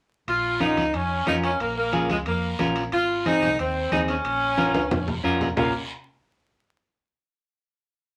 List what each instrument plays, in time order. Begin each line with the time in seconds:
0.27 fingered electric bass A#1, saxophone section F4, high timbale, long guiro
0.60 clean electric guitar C#4 F4 A#4, saxophone section D#4, high conga, high timbale, short guiro
0.77 fingered electric bass C#2, high conga, high timbale, short guiro
0.94 fingered electric bass F2, saxophone section C#4, high timbale, long guiro
1.26 fingered electric bass F2, clean electric guitar C#4 F4 A#4, saxophone section D#4, high conga, high timbale, low timbale, short guiro
1.43 saxophone section C#4, high timbale, short guiro
1.60 fingered electric bass A#1, saxophone section A#3, high timbale, long guiro
1.76 saxophone section A#3
1.92 clean electric guitar C#4 F4 G#4, high conga, high timbale, short guiro
2.10 fingered electric bass C#2, saxophone section G#3, high conga, high timbale, short guiro
2.26 fingered electric bass F2, saxophone section A#3, high timbale, long guiro
2.59 fingered electric bass A#1, clean electric guitar C#4 F4 A#4, high conga, high timbale, low timbale, short guiro
2.76 high timbale, short guiro
2.92 fingered electric bass G#1, saxophone section F4, high timbale, long guiro
3.25 clean electric guitar C4 D#4 G#4, saxophone section D#4, high conga, high timbale, short guiro
3.42 fingered electric bass C2, high conga, high timbale, short guiro
3.58 fingered electric bass D#2, saxophone section C4, high timbale, long guiro
3.91 fingered electric bass D#2, clean electric guitar C4 D#4 G#4, saxophone section D#4, high conga, high timbale, low timbale, short guiro
4.08 saxophone section C#4, high timbale, short guiro
4.25 fingered electric bass A#1, high timbale, long guiro
4.57 clean electric guitar C#4 F4 A#4, high conga, high timbale, short guiro
4.74 fingered electric bass C#2, high conga, high timbale, short guiro
4.91 fingered electric bass F2, low conga, high timbale, long guiro
5.08 low conga, low timbale
5.24 fingered electric bass F2, clean electric guitar C#4 F4 A#4, short guiro
5.41 low conga, low timbale, short guiro
5.57 fingered electric bass A#1, saxophone section A#3, clean electric guitar C#4 F4 A#4, low conga, low timbale, long guiro